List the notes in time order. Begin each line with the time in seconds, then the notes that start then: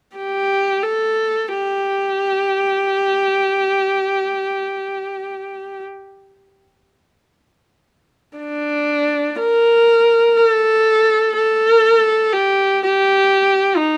0.16 G4
0.83 A4
1.48 G4
8.38 D4
9.39 A#4
10.37 A4
11.36 A4
12.33 G4
12.83 G4
13.77 D#4